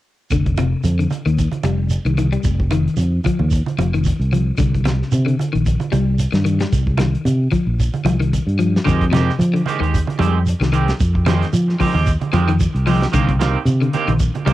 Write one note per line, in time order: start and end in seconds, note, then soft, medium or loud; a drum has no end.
0.30 0.73 F1 medium
0.30 0.55 D3 medium
0.30 kick medium
0.30 closed hi-hat medium
0.30 shekere medium
0.46 kick medium
0.46 closed hi-hat soft
0.57 0.82 C3 medium
0.57 closed hi-hat soft
0.57 high conga medium
0.57 shekere soft
0.84 1.05 F2 medium
0.84 closed hi-hat medium
0.84 high conga medium
0.84 shekere medium
0.99 1.23 D3 medium
0.99 closed hi-hat soft
1.10 closed hi-hat soft
1.10 high conga medium
1.10 shekere soft
1.26 1.47 D#2 medium
1.26 1.49 D#3 medium
1.26 closed hi-hat soft
1.38 kick medium
1.38 closed hi-hat medium
1.38 shekere medium
1.51 closed hi-hat soft
1.51 high conga medium
1.63 1.97 F1 medium
1.63 1.88 G3 medium
1.63 closed hi-hat soft
1.63 high conga medium
1.63 shekere soft
1.90 closed hi-hat medium
1.90 shekere medium
2.05 2.36 C2 medium
2.05 2.17 D#3 medium
2.05 closed hi-hat soft
2.17 2.31 D#3 medium
2.17 closed hi-hat soft
2.17 high conga medium
2.17 shekere soft
2.32 2.56 G3 medium
2.32 closed hi-hat soft
2.43 2.87 F1 medium
2.43 kick medium
2.43 closed hi-hat medium
2.43 shekere medium
2.60 kick medium
2.71 2.95 D#3 medium
2.71 closed hi-hat soft
2.71 high conga medium
2.71 shekere soft
2.88 closed hi-hat soft
2.97 3.19 F2 medium
2.97 closed hi-hat medium
2.97 high conga medium
2.97 shekere medium
3.24 3.49 F3 medium
3.24 kick medium
3.24 closed hi-hat soft
3.24 high conga medium
3.24 shekere soft
3.39 3.61 D#2 medium
3.39 high conga medium
3.51 kick medium
3.51 closed hi-hat medium
3.51 shekere medium
3.66 closed hi-hat soft
3.66 high conga medium
3.78 4.11 F1 medium
3.78 3.92 F3 medium
3.78 closed hi-hat soft
3.78 high conga medium
3.78 shekere soft
3.94 4.17 D#3 medium
3.94 closed hi-hat soft
4.04 kick medium
4.04 closed hi-hat medium
4.04 shekere medium
4.20 4.50 C2 medium
4.20 closed hi-hat soft
4.32 4.56 F3 medium
4.32 closed hi-hat soft
4.32 high conga medium
4.32 shekere soft
4.58 5.02 C2 medium
4.58 4.82 D3 medium
4.58 kick medium
4.58 closed hi-hat medium
4.58 shekere medium
4.75 kick medium
4.75 closed hi-hat soft
4.85 5.09 C3 medium
4.85 snare medium
4.85 closed hi-hat soft
4.85 high conga medium
4.85 shekere soft
5.02 snare soft
5.12 5.34 C3 medium
5.12 closed hi-hat medium
5.12 high conga medium
5.12 shekere medium
5.26 5.50 D3 medium
5.26 closed hi-hat soft
5.39 closed hi-hat soft
5.39 high conga medium
5.39 shekere soft
5.53 5.76 A#1 medium
5.53 5.77 D#3 medium
5.53 closed hi-hat soft
5.66 kick medium
5.66 closed hi-hat medium
5.66 shekere medium
5.80 closed hi-hat soft
5.80 high conga medium
5.92 6.25 C2 medium
5.92 6.16 G3 medium
5.92 closed hi-hat soft
5.92 high conga medium
5.92 shekere soft
6.19 closed hi-hat medium
6.19 shekere medium
6.32 6.64 G2 medium
6.32 6.44 D#3 medium
6.32 snare medium
6.32 closed hi-hat soft
6.45 6.59 D#3 medium
6.45 closed hi-hat soft
6.45 shekere soft
6.60 6.84 G3 medium
6.60 snare medium
6.60 closed hi-hat soft
6.73 7.15 C2 medium
6.73 kick medium
6.73 closed hi-hat medium
6.73 shekere medium
6.87 kick medium
6.98 7.23 D#3 medium
6.98 snare medium
6.98 closed hi-hat soft
6.98 high conga medium
6.98 shekere soft
7.15 closed hi-hat soft
7.25 7.47 C3 medium
7.25 closed hi-hat medium
7.25 high conga medium
7.25 shekere medium
7.51 7.76 F3 medium
7.51 kick medium
7.51 closed hi-hat soft
7.51 high conga medium
7.51 shekere soft
7.67 7.88 A#1 medium
7.80 kick medium
7.80 closed hi-hat medium
7.80 shekere medium
7.94 closed hi-hat soft
7.94 high conga medium
8.05 8.38 C2 medium
8.05 8.19 F3 medium
8.05 closed hi-hat soft
8.05 high conga medium
8.05 shekere soft
8.20 8.44 D#3 medium
8.20 closed hi-hat soft
8.33 kick medium
8.33 closed hi-hat medium
8.33 shekere medium
8.47 8.78 G2 medium
8.47 closed hi-hat soft
8.59 8.83 F3 medium
8.59 closed hi-hat soft
8.59 shekere soft
8.76 snare medium
8.84 9.29 F2 medium
8.84 9.09 D3 medium
8.84 9.03 D#3 medium
8.84 9.03 G#3 medium
8.84 9.03 C4 medium
8.84 9.03 G4 medium
8.84 kick medium
8.84 closed hi-hat medium
8.84 shekere medium
9.01 kick medium
9.01 closed hi-hat soft
9.11 9.36 C3 medium
9.11 9.30 D#3 medium
9.11 9.31 G#3 medium
9.11 9.31 C4 medium
9.11 9.31 G4 medium
9.11 snare medium
9.11 closed hi-hat soft
9.11 high conga medium
9.11 shekere soft
9.29 snare soft
9.39 9.60 F3 medium
9.39 closed hi-hat medium
9.39 high conga medium
9.39 shekere medium
9.54 9.78 D3 medium
9.54 closed hi-hat soft
9.66 9.81 D#3 medium
9.66 9.81 G#3 medium
9.66 9.82 C4 medium
9.66 9.80 G4 medium
9.66 closed hi-hat soft
9.66 high conga medium
9.66 shekere soft
9.80 10.02 D#2 medium
9.80 10.04 D#3 medium
9.80 9.97 G#3 soft
9.80 9.96 G4 soft
9.80 closed hi-hat soft
9.94 kick medium
9.94 closed hi-hat medium
9.94 shekere medium
10.07 closed hi-hat soft
10.07 high conga medium
10.19 10.52 F2 medium
10.19 10.37 D#3 medium
10.19 10.43 G3 medium
10.19 10.37 G#3 medium
10.19 10.37 C4 medium
10.19 10.38 G4 medium
10.19 closed hi-hat soft
10.19 high conga medium
10.19 shekere soft
10.46 closed hi-hat medium
10.46 shekere medium
10.60 10.91 C2 medium
10.60 10.72 D#3 medium
10.60 snare medium
10.60 closed hi-hat soft
10.73 10.90 D#3 medium
10.73 10.86 D#3 medium
10.73 10.91 G#3 medium
10.73 10.91 C4 medium
10.73 10.91 G4 medium
10.73 closed hi-hat soft
10.73 shekere soft
10.88 snare medium
10.88 closed hi-hat soft
11.00 11.42 F2 medium
11.00 kick medium
11.00 closed hi-hat medium
11.00 shekere medium
11.15 kick medium
11.26 11.50 D#3 medium
11.26 11.44 D#3 medium
11.26 11.45 G#3 medium
11.26 11.45 C4 medium
11.26 11.45 G4 medium
11.26 snare medium
11.26 closed hi-hat soft
11.26 high conga medium
11.26 shekere soft
11.42 snare soft
11.42 closed hi-hat soft
11.53 11.74 F3 medium
11.53 closed hi-hat medium
11.53 high conga medium
11.53 shekere medium
11.69 snare soft
11.79 11.95 D#3 medium
11.79 12.04 F3 medium
11.79 11.94 G#3 medium
11.79 11.94 C4 medium
11.79 11.93 G4 medium
11.79 kick medium
11.79 open hi-hat medium
11.79 high conga medium
11.79 shekere soft
11.94 12.16 D#2 medium
11.94 12.11 G#3 soft
11.94 12.10 C4 soft
11.94 12.10 G4 medium
11.94 high conga medium
12.06 kick medium
12.06 closed hi-hat medium
12.06 shekere medium
12.21 closed hi-hat soft
12.21 high conga medium
12.33 12.66 F2 medium
12.33 12.50 D#3 medium
12.33 12.46 F3 medium
12.33 12.51 G#3 medium
12.33 12.51 C4 medium
12.33 12.51 G4 medium
12.33 closed hi-hat soft
12.33 high conga medium
12.33 shekere soft
12.49 12.72 D#3 medium
12.49 closed hi-hat soft
12.60 kick medium
12.60 closed hi-hat medium
12.60 shekere medium
12.75 13.05 C2 medium
12.75 closed hi-hat soft
12.86 13.04 D#3 medium
12.86 13.11 F3 medium
12.86 13.04 G#3 medium
12.86 13.04 C4 medium
12.86 13.05 G4 medium
12.86 open hi-hat medium
12.86 high conga medium
12.86 shekere soft
13.02 snare medium
13.12 13.56 C2 medium
13.12 13.38 D3 medium
13.12 13.30 D#3 medium
13.12 13.31 A#3 medium
13.12 13.31 C4 medium
13.12 13.31 G4 medium
13.12 kick medium
13.12 closed hi-hat medium
13.12 shekere medium
13.29 kick medium
13.29 closed hi-hat soft
13.39 13.57 D#3 medium
13.39 13.57 A#3 medium
13.39 13.58 C4 medium
13.39 13.58 G4 medium
13.39 snare medium
13.39 closed hi-hat soft
13.39 high conga medium
13.39 shekere soft
13.65 13.87 C3 medium
13.65 closed hi-hat medium
13.65 high conga medium
13.65 shekere medium
13.82 14.05 D3 medium
13.82 closed hi-hat soft
13.93 14.11 D#3 medium
13.93 14.11 A#3 medium
13.93 14.11 C4 medium
13.93 14.11 G4 medium
13.93 closed hi-hat soft
13.93 high conga medium
13.93 shekere soft
14.08 14.29 A#1 medium
14.08 14.32 D#3 medium
14.08 closed hi-hat soft
14.08 high conga medium
14.19 kick medium
14.19 closed hi-hat medium
14.19 shekere medium
14.35 closed hi-hat soft
14.35 high conga medium
14.45 14.53 C2 medium
14.45 14.53 D#3 medium
14.45 14.53 G3 medium
14.45 14.53 A#3 medium
14.45 14.53 C4 medium
14.45 14.53 G4 medium
14.45 closed hi-hat soft
14.45 high conga medium
14.45 shekere soft